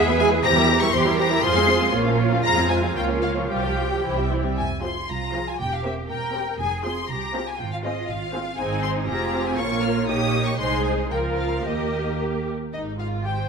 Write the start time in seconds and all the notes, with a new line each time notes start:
Already playing: E2 G#4 E5
0.08 B3 E4 B4 E5
0.19 G#3 G#4 B4 E5 G#5
0.31 B3 E4 B4 E5
0.43 E2 E3 G4 C5 A#5
0.55 G3 E4 A#4 E5
0.68 E3 G4 C5
0.81 G3 E4 A#4 E5 C#6
0.93 E2 E3 G4 C5 C6
1.05 G3 E4 A#4 E5
1.18 E3 G4 C5 A#5
1.30 G3 E4 A#4 E5
1.42 F2 F3 F4 G#4 C5 C6
1.55 G#3 C4 G#4 F5
1.67 F3 F4 C5
1.79 G#3 C4 G#4 F5
1.92 A#1 A#3 F4 C#5
2.05 F3 C#4 A#4 F5
2.17 A#3 F4 C#5
2.31 F3 C#4 A#4 F5
2.43 F2 G#3 F4 C5 A#5
2.56 F3 C4 G#4 F5
2.68 G#3 F4 C5 G#5
2.82 F3 C4 G#4 F5
2.95 C#2 A#3 F4 C#5 F5 G5
3.08 F3 C#4 A#4 C#5
3.21 A#3 F4 C#5 F5
3.35 F3 C#4 A#4 C#5
3.49 C2 G3 F4 G4 C5 G5
3.62 F3 G4 F5
3.76 G3 F4 C5
3.90 F3 G4 F5
4.03 C2 E3 E4 C5
4.17 G3 C4 G4 E5
4.30 E3 E4 C5
4.44 G3 C4 G4 E5
4.57 F1 G#5
4.82 F3 F4 G#4 C5 C6
5.09 C2 F4 A#5
5.34 F3 F4 G#4 C5
5.49 G#5
5.60 E1 G4 G5
5.73 F5
5.84 C4 G4 A#4 C5 E5
6.10 E1 A#4 G5
6.34 C4 G4 A#4 C5
6.59 F1 G#4 G#5
6.84 C4 F4 G#4 C5 C6
7.09 C2 G4 A#5
7.34 C4 F4 G#4 C5
7.47 G#5
7.58 G#1 F4 G5
7.72 F5
7.84 C4 F4 G#4 C5 D#5
8.08 G#1 F5
8.33 C4 F4 G#4 C5
8.58 G#1 C4 D#4 G#4 C5 G#5
8.82 C6
9.08 F1 C4 F4 G4 G#4 C5 A#5
9.45 G#5
9.57 A#1 A#3 F4 A#4 C#5 C#6
9.82 F6
10.07 A#1 A#3 D#4 G4 C#5 D#6
10.46 C#6
10.58 C2 G#3 D#4 G#4 C5 C6
10.84 G#5
11.11 C#2 F3 F4 A#4 G5
11.37 F5
11.65 D#2 A#3 G4 A#4 D#5
12.73 G#1 G#2 D#4 D#5
12.99 F4 F5
13.25 G4 C5 G5